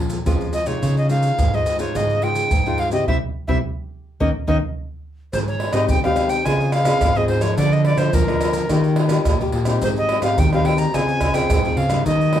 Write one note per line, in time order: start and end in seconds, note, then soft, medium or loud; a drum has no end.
0.00 0.23 A#2 medium
0.00 0.18 F3 medium
0.10 pandeiro medium
0.10 maracas medium
0.26 0.80 F2 soft
0.26 0.62 F3 medium
0.26 0.53 G#3 medium
0.26 0.53 C#4 medium
0.26 0.53 F4 medium
0.26 pandeiro medium
0.26 maracas medium
0.26 surdo medium
0.41 pandeiro soft
0.41 maracas soft
0.53 0.68 D#5 medium
0.53 pandeiro medium
0.53 maracas medium
0.66 0.79 C3 medium
0.66 1.05 G#3 medium
0.66 1.05 D#4 medium
0.66 1.06 F4 medium
0.66 0.96 C#5 medium
0.66 pandeiro medium
0.66 maracas medium
0.83 1.36 C#3 medium
0.83 1.31 C#3 loud
0.83 pandeiro medium
0.83 maracas medium
0.83 surdo medium
0.97 1.10 D#5 medium
0.97 pandeiro soft
0.97 maracas soft
1.10 1.37 G#3 soft
1.10 1.37 D#4 soft
1.10 1.37 F4 medium
1.10 1.56 F5 medium
1.10 pandeiro medium
1.10 maracas medium
1.23 pandeiro medium
1.23 maracas medium
1.39 1.63 G#2 medium
1.39 1.93 G#2 soft
1.39 pandeiro medium
1.39 maracas medium
1.39 surdo medium
1.54 1.77 G#3 medium
1.54 1.77 D#4 medium
1.54 1.77 F4 medium
1.54 1.80 D#5 medium
1.54 pandeiro soft
1.54 maracas soft
1.66 1.90 G#2 medium
1.66 pandeiro medium
1.66 maracas medium
1.79 2.18 G#3 medium
1.79 2.18 D#4 medium
1.79 2.18 F4 medium
1.79 1.98 C#5 medium
1.79 pandeiro medium
1.79 maracas medium
1.95 2.43 G#2 medium
1.95 2.49 C#3 medium
1.95 2.25 D#5 medium
1.95 pandeiro medium
1.95 maracas medium
1.95 surdo medium
2.10 pandeiro soft
2.10 maracas soft
2.22 2.50 G#3 medium
2.22 2.50 D#4 medium
2.22 2.50 F4 medium
2.22 2.81 G5 medium
2.22 pandeiro medium
2.35 pandeiro medium
2.35 maracas medium
2.51 2.88 G#2 medium
2.51 3.05 G#2 soft
2.51 pandeiro medium
2.51 maracas medium
2.51 surdo medium
2.66 2.90 G#3 medium
2.66 2.90 D#4 medium
2.66 2.90 F4 medium
2.66 pandeiro soft
2.66 maracas soft
2.78 2.92 F5 medium
2.78 pandeiro medium
2.91 3.05 C#3 medium
2.91 3.07 C4 medium
2.91 3.07 E4 medium
2.91 3.07 G4 medium
2.91 3.06 D#5 medium
2.91 pandeiro soft
2.91 maracas medium
3.07 3.18 C3 medium
3.07 3.17 G3 medium
3.07 3.17 C4 medium
3.07 3.17 E4 medium
3.07 3.17 E5 medium
3.07 surdo medium
3.48 3.59 C3 medium
3.48 3.58 G3 medium
3.48 3.58 C4 medium
3.48 3.58 E4 medium
3.48 3.58 E5 medium
3.48 surdo medium
4.20 4.31 D#3 medium
4.20 4.29 A#3 medium
4.20 4.29 C#4 medium
4.20 4.29 D#4 medium
4.20 4.29 D#5 medium
4.20 surdo medium
4.47 4.59 D#3 medium
4.47 4.57 A#3 medium
4.47 4.57 C#4 medium
4.47 4.57 D#4 medium
4.47 4.57 D#5 medium
4.47 surdo medium
5.33 5.69 G#2 medium
5.33 5.87 G#3 medium
5.33 5.39 C5 medium
5.33 pandeiro medium
5.33 maracas medium
5.33 surdo medium
5.48 5.74 C#5 medium
5.48 pandeiro soft
5.48 maracas soft
5.60 pandeiro medium
5.60 tamborim medium
5.73 5.86 G#2 medium
5.73 5.98 C4 medium
5.73 5.98 D#4 medium
5.73 5.98 G4 medium
5.73 5.88 D#5 medium
5.73 pandeiro medium
5.73 tamborim medium
5.73 maracas medium
5.89 6.43 D#3 soft
5.89 6.37 G#3 medium
5.89 6.02 G5 loud
5.89 pandeiro medium
5.89 maracas medium
5.89 surdo medium
6.04 6.41 C4 medium
6.04 6.42 D#4 medium
6.04 6.42 G4 medium
6.04 6.31 F5 medium
6.04 pandeiro soft
6.04 tamborim medium
6.04 maracas soft
6.16 pandeiro medium
6.16 tamborim medium
6.16 maracas medium
6.29 6.46 G5 loud
6.29 pandeiro medium
6.29 maracas medium
6.45 6.93 C#3 loud
6.45 6.99 C#3 medium
6.45 6.72 C4 medium
6.45 6.72 F4 medium
6.45 6.72 G#4 medium
6.45 6.74 G#5 medium
6.45 pandeiro medium
6.45 tamborim medium
6.45 maracas medium
6.45 surdo medium
6.61 pandeiro soft
6.61 maracas soft
6.72 7.18 F5 medium
6.72 pandeiro medium
6.72 tamborim medium
6.72 maracas medium
6.85 7.10 C4 medium
6.85 7.10 F4 medium
6.85 7.11 G#4 medium
6.85 pandeiro medium
6.85 tamborim medium
6.85 maracas medium
7.01 7.55 G#2 soft
7.01 7.26 G#2 medium
7.01 pandeiro medium
7.01 tamborim medium
7.01 maracas medium
7.01 surdo medium
7.16 7.40 C4 medium
7.16 7.40 F4 medium
7.16 7.40 G#4 medium
7.16 7.28 D#5 medium
7.16 pandeiro soft
7.16 maracas soft
7.28 7.53 G#2 medium
7.28 7.43 C5 medium
7.28 pandeiro medium
7.41 7.94 F3 medium
7.41 7.94 A#3 medium
7.41 7.95 F4 medium
7.41 7.57 C#5 medium
7.41 pandeiro medium
7.41 tamborim medium
7.41 maracas medium
7.58 7.93 D3 medium
7.58 8.11 D3 medium
7.58 7.74 D5 medium
7.58 pandeiro medium
7.58 maracas medium
7.58 surdo medium
7.72 7.85 D#5 medium
7.72 pandeiro soft
7.72 maracas soft
7.85 7.99 D5 medium
7.85 pandeiro medium
7.85 tamborim medium
7.97 8.10 D3 medium
7.97 8.23 F3 medium
7.97 8.23 A#3 medium
7.97 8.23 F4 medium
7.97 8.16 C5 medium
7.97 pandeiro medium
7.97 tamborim medium
7.97 maracas medium
8.13 8.67 D3 medium
8.13 8.61 F3 medium
8.13 8.98 A#4 medium
8.13 pandeiro medium
8.13 maracas medium
8.13 surdo loud
8.28 8.66 F3 medium
8.28 8.66 A#3 medium
8.28 8.66 F4 medium
8.28 pandeiro soft
8.28 tamborim medium
8.28 maracas soft
8.41 pandeiro medium
8.41 tamborim medium
8.41 maracas medium
8.53 pandeiro medium
8.53 maracas medium
8.69 9.18 D#3 loud
8.69 9.23 D#3 medium
8.69 9.08 A#3 medium
8.69 9.08 F4 medium
8.69 9.08 G4 medium
8.69 pandeiro medium
8.69 tamborim medium
8.69 maracas medium
8.69 surdo medium
8.84 pandeiro soft
8.84 maracas soft
8.96 pandeiro medium
8.96 tamborim medium
9.09 9.34 A#3 medium
9.09 9.35 F4 medium
9.09 9.35 G4 medium
9.09 pandeiro medium
9.09 tamborim medium
9.09 maracas medium
9.25 9.79 A#2 soft
9.25 9.50 A#2 medium
9.25 pandeiro medium
9.25 tamborim medium
9.25 maracas medium
9.25 surdo medium
9.41 9.64 A#3 medium
9.41 9.64 F4 medium
9.41 9.64 G4 medium
9.41 pandeiro soft
9.41 maracas soft
9.52 9.77 A#2 medium
9.52 pandeiro medium
9.65 10.18 C4 medium
9.65 10.19 D#4 medium
9.65 10.19 G4 medium
9.65 pandeiro medium
9.65 tamborim medium
9.65 maracas medium
9.82 10.18 G#2 loud
9.82 10.35 G#3 medium
9.82 9.89 C5 medium
9.82 pandeiro medium
9.82 maracas medium
9.82 surdo medium
9.96 10.22 D#5 medium
9.96 pandeiro soft
9.96 maracas soft
10.09 pandeiro medium
10.09 tamborim medium
10.22 10.35 G#2 medium
10.22 10.47 C4 medium
10.22 10.47 D#4 medium
10.22 10.47 G4 medium
10.22 10.41 F5 medium
10.22 pandeiro medium
10.22 tamborim medium
10.22 maracas medium
10.38 10.86 D#3 medium
10.38 10.91 D#3 soft
10.38 10.53 G5 medium
10.38 pandeiro medium
10.38 maracas medium
10.38 surdo loud
10.53 10.90 C4 medium
10.53 10.90 D#4 medium
10.53 10.91 G4 medium
10.53 10.67 F5 medium
10.53 pandeiro soft
10.53 tamborim medium
10.53 maracas soft
10.65 10.80 G5 medium
10.65 pandeiro medium
10.65 tamborim medium
10.78 10.96 A#5 loud
10.78 pandeiro medium
10.78 maracas medium
10.94 11.42 C#3 medium
10.94 11.48 C#3 medium
10.94 11.21 C4 medium
10.94 11.21 F4 medium
10.94 11.21 G#4 medium
10.94 11.36 G#5 loud
10.94 pandeiro medium
10.94 tamborim medium
10.94 maracas medium
10.94 surdo medium
11.08 pandeiro soft
11.08 maracas soft
11.21 pandeiro medium
11.21 tamborim medium
11.21 maracas medium
11.21 surdo medium
11.34 11.59 C4 medium
11.34 11.59 F4 medium
11.34 11.59 G#4 medium
11.34 11.79 G5 medium
11.34 pandeiro medium
11.34 tamborim medium
11.34 maracas medium
11.50 11.74 G#2 medium
11.50 12.04 G#2 medium
11.50 pandeiro medium
11.50 tamborim medium
11.50 maracas medium
11.50 surdo loud
11.65 11.88 C4 medium
11.65 11.89 F4 medium
11.65 11.89 G#4 medium
11.65 pandeiro soft
11.65 maracas soft
11.77 12.01 C#3 medium
11.77 12.06 F5 medium
11.77 pandeiro medium
11.90 12.33 G3 medium
11.90 12.33 A#3 medium
11.90 12.33 D#4 medium
11.90 pandeiro medium
11.90 tamborim medium
11.90 maracas medium
12.06 12.40 D#3 medium
12.06 12.40 D#5 medium
12.06 pandeiro medium
12.06 maracas medium
12.06 surdo medium
12.21 pandeiro soft
12.21 maracas soft
12.33 12.40 G3 soft
12.33 12.40 A#3 medium
12.33 12.40 D#4 medium
12.33 pandeiro medium
12.33 tamborim medium